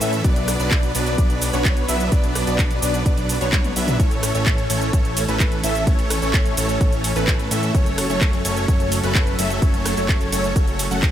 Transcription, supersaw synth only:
0.01 0.22 E3 medium
0.01 0.22 A3 medium
0.01 0.22 C#4 medium
0.01 0.22 A4 medium
0.01 0.22 E5 loud
0.25 0.57 F#3 loud
0.25 0.57 B3 medium
0.25 0.57 D4 medium
0.25 0.57 B4 medium
0.25 0.57 D5 loud
0.60 0.92 F#3 loud
0.60 0.92 B3 medium
0.60 0.92 D4 medium
0.60 0.92 B4 medium
0.60 0.92 D5 loud
0.95 1.15 F#3 medium
0.95 1.15 B3 medium
0.95 1.15 D4 medium
0.95 1.15 B4 medium
0.95 1.15 D5 loud
1.18 1.48 F#3 medium
1.18 1.48 B3 medium
1.18 1.48 D4 medium
1.18 1.48 B4 medium
1.18 1.48 D5 medium
1.53 1.86 F#3 medium
1.53 1.86 B3 medium
1.53 1.86 D4 medium
1.53 1.86 B4 medium
1.53 1.86 C#5 loud
1.89 2.09 F#3 loud
1.89 2.09 B3 medium
1.89 2.09 D4 medium
1.89 2.09 B4 medium
1.89 2.09 E5 loud
2.12 2.44 B3 medium
2.12 2.44 B4 medium
2.47 2.80 F#3 loud
2.47 2.80 B3 medium
2.47 2.80 D4 medium
2.47 2.80 B4 medium
2.47 2.80 D5 loud
2.82 3.03 F#3 medium
2.82 3.03 B3 medium
2.82 3.03 D4 medium
2.82 3.03 B4 medium
2.82 3.03 D5 medium
3.06 3.36 F#3 medium
3.06 3.36 B3 medium
3.06 3.36 D4 medium
3.06 3.36 B4 medium
3.06 3.36 D5 loud
3.41 3.73 F#3 medium
3.41 3.73 B3 medium
3.41 3.73 D4 medium
3.41 3.73 B4 medium
3.41 3.73 C#5 loud
3.76 3.97 F#3 loud
3.76 3.97 B3 medium
3.76 3.97 D4 medium
3.76 3.97 B4 medium
3.76 3.97 E5 loud
4.00 4.32 E3 loud
4.00 4.32 A3 medium
4.00 4.32 C#4 medium
4.00 4.32 A4 medium
4.35 4.67 E3 medium
4.35 4.67 A3 medium
4.35 4.67 C#4 medium
4.35 4.67 A4 medium
4.35 4.67 C#5 loud
4.70 4.90 E3 medium
4.70 4.90 A3 medium
4.70 4.90 C#4 medium
4.70 4.90 A4 medium
4.70 4.90 C#5 loud
4.93 5.23 E3 medium
4.93 5.23 A3 medium
4.93 5.23 C#4 medium
4.93 5.23 A4 medium
4.93 5.23 C#5 loud
5.28 5.61 E3 medium
5.28 5.61 A3 medium
5.28 5.61 C#4 medium
5.28 5.61 A4 medium
5.28 5.61 B4 loud
5.64 5.84 E3 medium
5.64 5.84 A3 medium
5.64 5.84 C#4 medium
5.64 5.84 A4 medium
5.64 5.84 E5 loud
5.87 6.19 E3 medium
5.87 6.19 A3 medium
5.87 6.19 C#4 medium
5.87 6.19 A4 medium
5.87 6.19 C#5 loud
6.22 6.55 E3 loud
6.22 6.55 A3 medium
6.22 6.55 C#4 medium
6.22 6.55 A4 medium
6.22 6.55 C#5 loud
6.57 6.78 E3 medium
6.57 6.78 A3 medium
6.57 6.78 C#4 medium
6.57 6.78 A4 medium
6.57 6.78 C#5 loud
6.81 7.11 E3 medium
6.81 7.11 A3 medium
6.81 7.11 C#4 medium
6.81 7.11 C#5 loud
7.16 7.48 E3 loud
7.16 7.48 A3 medium
7.16 7.48 C#4 medium
7.16 7.48 A4 medium
7.16 7.48 B4 loud
7.51 7.72 E3 medium
7.51 7.72 A3 medium
7.51 7.72 C#4 medium
7.51 7.72 A4 medium
7.51 7.72 E5 loud
7.74 8.07 F#3 loud
7.74 8.07 A3 medium
7.74 8.07 C#4 medium
7.74 8.07 A4 medium
7.74 8.07 C#5 loud
8.10 8.42 F#3 medium
8.10 8.42 A3 medium
8.10 8.42 C#4 medium
8.10 8.42 A4 medium
8.10 8.42 C#5 loud
8.45 8.65 F#3 medium
8.45 8.66 A3 medium
8.45 8.66 C#4 medium
8.45 8.65 A4 medium
8.45 8.66 C#5 loud
8.68 8.98 F#3 medium
8.68 8.98 A3 medium
8.68 8.98 C#4 medium
8.68 8.98 A4 medium
8.68 8.98 C#5 loud
9.03 9.36 F#3 loud
9.03 9.36 A3 medium
9.03 9.36 C#4 medium
9.03 9.36 A4 medium
9.03 9.36 B4 loud
9.39 9.59 F#3 loud
9.39 9.59 A3 medium
9.39 9.59 C#4 medium
9.39 9.59 A4 medium
9.39 9.59 E5 loud
9.62 9.94 F#3 loud
9.62 9.94 A3 medium
9.62 9.94 C#4 medium
9.62 9.94 A4 medium
9.62 9.94 C#5 loud
9.97 10.30 F#3 medium
9.97 10.30 A3 medium
9.97 10.30 C#4 medium
9.97 10.30 A4 medium
9.97 10.30 C#5 loud
10.32 10.53 F#3 medium
10.32 10.53 A3 medium
10.32 10.53 C#4 medium
10.32 10.53 A4 medium
10.32 10.53 C#5 loud
10.56 10.86 F#3 medium
10.56 10.86 A3 medium
10.56 10.86 C#4 medium
10.56 10.86 A4 medium
10.56 10.86 C#5 loud
10.91 11.10 F#3 medium
10.91 11.10 A3 medium
10.91 11.10 C#4 medium
10.91 11.10 A4 medium
10.91 11.10 F#5 loud

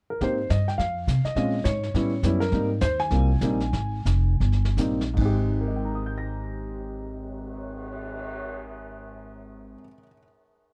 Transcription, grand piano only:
0.10 0.22 A#4 medium
0.21 0.37 A#3 soft
0.21 0.38 C4 soft
0.21 0.38 D#4 soft
0.21 0.37 G4 soft
0.21 0.49 C5 medium
0.50 0.67 D#5 medium
0.68 0.73 G5 medium
0.78 1.22 F5 medium
1.25 1.35 D#5 medium
1.37 1.53 G#3 medium
1.37 1.53 C4 soft
1.37 1.53 C#4 soft
1.37 1.53 F4 medium
1.37 1.67 D#5 medium
1.64 2.19 C#5 medium
1.95 2.11 G3 soft
1.95 2.11 B3 soft
1.95 2.11 C#4 soft
1.95 2.11 E4 medium
2.24 2.40 G3 medium
2.24 2.40 B3 soft
2.24 2.40 C#4 medium
2.24 2.41 E4 medium
2.40 2.68 A#4 medium
2.52 2.69 G3 soft
2.52 2.69 A#3 soft
2.52 2.69 C4 soft
2.52 2.69 D#4 medium
2.81 2.99 C5 medium
3.00 4.74 G#5 loud
3.12 3.28 G3 medium
3.12 3.29 A#3 soft
3.12 3.28 C4 medium
3.12 3.29 F4 medium
3.42 3.59 G3 medium
3.42 3.60 A#3 soft
3.42 3.60 C4 medium
3.42 3.60 D#4 medium
4.78 5.00 G3 soft
4.78 5.00 A#3 soft
4.78 5.00 C4 soft
4.78 5.00 D#4 medium
5.14 9.75 G#2 medium
5.18 9.79 G#3 medium
5.18 9.83 C4 medium
5.25 9.87 G4 medium
5.61 9.94 A#4 soft
5.68 9.98 D#5 soft
5.76 10.02 G5 soft
5.85 10.06 A#5 soft
5.95 10.11 D#6 soft
6.06 10.17 G6 soft
6.18 10.23 A#6 soft

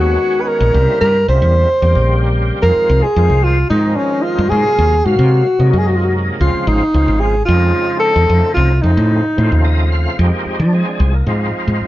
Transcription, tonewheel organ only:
0.00 0.74 D#3 medium
0.00 0.74 G#3 medium
0.00 0.74 B3 medium
0.00 0.75 C#4 medium
0.00 0.75 F#4 medium
0.73 1.17 C#3 medium
0.73 1.17 G3 medium
0.73 1.17 A#3 medium
0.73 1.18 C4 medium
0.73 1.18 E4 medium
1.27 1.69 C#3 medium
1.27 1.69 G3 medium
1.27 1.69 A#3 medium
1.27 1.69 C4 medium
1.27 1.70 E4 medium
1.81 2.63 C#3 medium
1.81 2.63 G3 medium
1.81 2.63 A#3 medium
1.81 2.62 C4 medium
1.81 2.64 G4 medium
2.62 3.06 D#3 medium
2.62 3.06 F3 medium
2.62 3.06 G#3 medium
2.62 3.07 C4 medium
2.62 3.07 F4 medium
3.17 3.58 D#3 medium
3.17 3.58 F3 medium
3.17 3.58 G#3 medium
3.17 3.59 C4 medium
3.17 3.59 F4 medium
3.70 4.52 D#3 medium
3.70 4.52 F3 medium
3.70 4.51 G#3 medium
3.70 4.53 C4 medium
3.70 4.53 D#4 medium
4.51 4.95 C3 medium
4.51 4.95 F#3 medium
4.51 4.95 G#3 medium
4.51 4.96 A#3 medium
4.51 4.96 F4 medium
5.06 5.47 C3 medium
5.06 5.47 F#3 medium
5.06 5.47 G#3 medium
5.06 5.47 A#3 medium
5.06 5.47 F5 medium
5.59 6.40 C3 medium
5.59 6.40 F#3 medium
5.59 6.39 G#3 medium
5.59 6.41 A#3 medium
5.59 6.41 D#4 medium
6.39 6.83 C#3 medium
6.39 6.84 F3 medium
6.39 6.84 G#3 medium
6.39 6.84 C4 medium
6.39 6.84 F4 medium
6.94 7.35 C#3 medium
6.94 7.35 F3 medium
6.94 7.35 G#3 medium
6.94 7.36 C4 medium
6.94 7.36 F4 medium
7.47 8.28 C#3 medium
7.47 8.28 F3 medium
7.47 8.30 G#3 medium
7.47 8.29 C4 medium
7.47 8.30 D#4 medium
8.29 8.73 C#3 medium
8.29 8.73 F3 medium
8.29 8.73 A3 medium
8.29 8.73 C4 medium
8.29 8.74 D#4 medium
8.84 9.24 C#3 medium
8.84 9.24 F3 medium
8.84 9.25 A3 medium
8.84 9.25 C4 medium
8.84 9.25 D#4 medium
9.37 10.18 C#3 medium
9.37 10.16 F3 medium
9.37 10.19 A3 medium
9.37 10.17 C4 medium
9.37 10.19 F4 medium
9.64 9.90 D#5 medium
9.92 10.17 F5 medium
10.17 10.61 F3 medium
10.17 10.62 G#3 medium
10.17 10.45 C4 medium
10.17 10.62 D#4 medium
10.17 10.62 G4 medium
10.34 10.46 A#3 medium
10.46 10.59 C4 medium
10.60 10.73 D4 medium
10.73 11.14 F3 medium
10.73 11.14 G#3 medium
10.73 10.99 C4 medium
10.73 10.86 D#4 loud
10.73 11.14 G#4 medium
10.87 11.00 D4 medium
11.00 11.13 C4 medium
11.14 11.27 A#3 medium
11.26 11.87 F3 medium
11.26 11.87 G#3 medium
11.26 11.87 C4 medium
11.26 11.87 D#4 medium
11.26 11.87 F4 medium

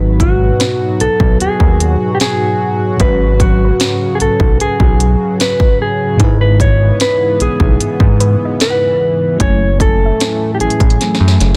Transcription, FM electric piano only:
0.00 2.94 G#2 medium
0.00 2.95 F#3 medium
0.00 2.96 D#4 medium
0.00 2.97 F#4 medium
0.00 2.98 B4 medium
2.97 6.14 G#2 medium
2.97 6.15 F#3 medium
2.97 6.16 C#4 medium
3.02 6.17 F#4 medium
3.02 6.18 B4 medium
6.16 9.34 G#2 medium
6.16 9.35 G#3 medium
6.16 9.36 D#4 medium
6.22 9.37 E4 medium
6.22 9.38 B4 medium
9.36 11.56 F#3 medium
9.36 11.56 C#4 medium
9.36 11.56 E4 medium
9.42 11.56 A3 medium
9.42 11.56 G#5 medium

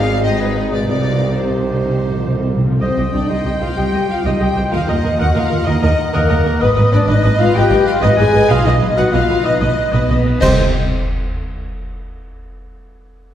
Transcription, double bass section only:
0.00 0.83 G#1 medium
0.88 2.62 C2 medium
2.82 2.88 C2 medium
2.98 3.04 C2 soft
3.14 3.20 C2 soft
3.30 3.36 C2 medium
3.46 3.53 C2 soft
3.62 3.68 C2 soft
3.77 3.84 C2 medium
3.94 4.00 C2 soft
4.25 4.31 C2 medium
4.41 4.47 C2 soft
4.57 4.63 C2 soft
4.73 4.79 D#2 medium
4.88 4.94 D#2 medium
5.04 5.10 D#2 medium
5.20 5.26 D#2 medium
5.36 5.42 D#2 medium
5.52 5.58 D#2 medium
5.67 5.73 D#2 medium
5.82 5.89 D#2 medium
6.14 6.20 D#2 medium
6.30 6.36 D#2 medium
6.45 6.51 D#2 medium
6.61 6.67 G#1 medium
6.77 6.83 G#1 medium
6.93 6.99 G#1 medium
7.08 7.14 G#1 medium
7.24 7.30 G#1 medium
7.40 7.46 G#1 medium
7.55 7.61 G#1 loud
7.71 7.77 G#1 medium
8.02 8.09 G#1 loud
8.18 8.24 G#1 medium
8.34 8.40 G#1 medium
8.50 8.56 B1 medium
8.66 8.72 B1 medium
8.81 8.88 B1 medium
8.97 9.03 B1 medium
9.13 9.19 B1 medium
9.29 9.35 B1 medium
9.44 9.51 B1 medium
9.60 9.66 B1 medium
9.93 9.99 B1 medium
10.09 10.15 B1 medium
10.25 10.31 B1 soft
10.41 10.59 C2 medium

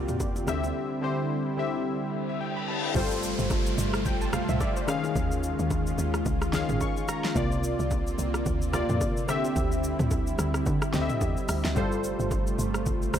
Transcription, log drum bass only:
0.00 0.10 C2 medium
0.09 0.44 F2 medium
0.48 0.72 D2 loud
2.95 3.34 G1 loud
3.39 3.74 G1 loud
3.78 4.07 G1 loud
4.06 4.45 A1 loud
4.49 4.59 C2 medium
5.16 5.55 D#2 loud
5.59 5.94 D#2 loud
5.98 6.23 D#2 loud
6.26 6.65 C#2 loud
6.69 6.80 G#1 medium
7.36 7.75 C2 loud
7.79 8.14 C2 loud
8.18 8.43 C2 medium
8.46 8.85 D2 loud
8.90 9.00 F2 medium
9.56 9.95 D2 loud
10.00 10.35 D2 loud
10.39 10.63 D2 loud
10.66 10.80 D3 loud
10.94 11.08 D2 loud
11.21 11.35 E2 loud
11.49 11.63 D2 medium
11.65 11.75 D2 medium
11.76 12.15 G1 loud
12.20 12.55 G1 loud
12.59 12.88 G1 loud
12.87 13.19 A1 loud

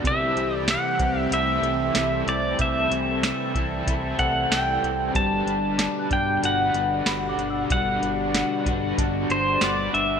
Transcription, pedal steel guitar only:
0.07 0.56 E5 medium
0.56 0.70 D5 medium
0.71 1.20 F#5 medium
1.20 1.33 E5 medium
1.34 2.24 E5 medium
2.29 2.61 D5 medium
2.62 4.19 E5 loud
4.19 4.52 F#5 medium
4.52 5.11 G5 loud
5.16 6.12 A5 loud
6.13 6.44 G5 medium
6.45 7.71 F#5 loud
7.72 8.95 F#5 medium
9.32 9.63 C5 medium
9.64 9.92 D5 loud
9.94 10.20 E5 loud

